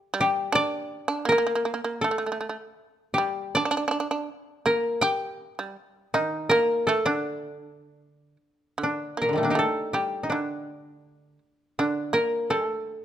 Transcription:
Already playing: koto G4 A4
0.14 shamisen G3
0.21 koto G4
0.52 shamisen D4, koto D5
1.08 shamisen D4
1.25 shamisen A#3, koto A#4
1.32 shamisen A#3
1.38 shamisen A#3
1.47 shamisen A#3
1.55 shamisen A#3
1.65 shamisen A#3
1.74 shamisen A#3
1.84 shamisen A#3
2.01 shamisen A3, koto A4
2.11 shamisen A3
2.18 shamisen A3
2.26 shamisen A3
2.32 shamisen A3
2.41 shamisen A3
2.49 shamisen A3
3.14 koto G4
3.18 shamisen G3
3.55 shamisen D4, koto D5
3.65 shamisen D4
3.71 shamisen D4
3.77 shamisen D4
3.88 shamisen D4
4.00 shamisen D4
4.11 shamisen D4
4.66 shamisen A#3, koto A#4
5.01 shamisen G4, koto G5
5.59 shamisen G3
6.14 shamisen D#3, koto D#4
6.49 shamisen A#3, koto A#4
6.87 shamisen A3, koto A4
7.05 shamisen D3, koto D4
8.78 shamisen D3
8.83 koto D4
9.17 shamisen A#3
9.22 koto A#2 A#4
9.29 koto D3
9.33 koto D#3 G3
9.38 koto A3
9.43 koto A#3 D4
9.50 koto D#4 G4
9.55 shamisen A3, koto A4
9.93 shamisen G3, koto G4
10.23 koto D#4
10.30 shamisen D3, koto D4
11.79 shamisen D3, koto D4
12.13 shamisen A#3, koto A#4
12.50 shamisen A3, koto A4

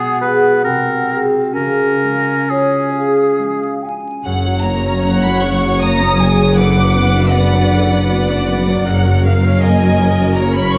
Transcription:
Already playing: harp B2 F#3 G#3 F#4, clarinet B3, oboe G#4, flute section F#5
0.21 harp G#4, oboe B4
0.64 harp C3, clarinet C4, oboe A#4
1.10 harp F#4 G#4
1.53 harp C#3, clarinet C#4, oboe A#4, flute section F5
2.04 harp G#3
2.49 harp F4, oboe G#4, flute section C#5
2.93 harp G#4, flute section F5
3.39 harp G#3
3.83 harp C#4, flute section G#5
4.24 double bass section F#1, cello section F#2, harp F#2, viola section C#3 C#5, violin section F#5
4.45 viola section F#3
4.63 viola section A#3, harp A#3, violin section A#5
4.86 viola section C#4
5.05 viola section A#3, harp C#4, violin section F#5
5.24 viola section F#3, violin section B5
5.42 viola section C#3, harp F#4, violin section C#6
5.64 viola section F#3
5.82 viola section A#3, harp A#3, violin section A#5 D#6
6.01 viola section C#4
6.20 harp C#3, viola section A#3, violin section G#5
6.39 viola section F#3
6.57 harp F#2, viola section D3 B4, violin section F#5 D6
6.75 viola section F#3
6.95 viola section B3, harp B3
7.14 viola section D4
7.33 viola section B3, harp D4, violin section D5 F#5
7.53 viola section F#3
7.71 viola section D3, harp F#4
7.91 viola section F#3
8.10 viola section B3, harp B3, violin section D5
8.30 viola section D4
8.48 harp F#3, viola section B3
8.67 viola section F#3
8.87 double bass section F#1, cello section F#2, harp F#2, viola section C#3 A#4, violin section F#5
9.05 viola section F#3
9.24 viola section A#3, harp A#3, violin section F5
9.44 viola section C#4
9.61 viola section A#3, harp C#4, violin section D#5 G#5
9.81 viola section F#3
10.00 viola section C#3, harp F#4
10.18 viola section F#3
10.37 harp A#3, viola section A#3, violin section C#5 A#5
10.55 viola section C#4, violin section B5
10.72 viola section A#3, violin section C#6

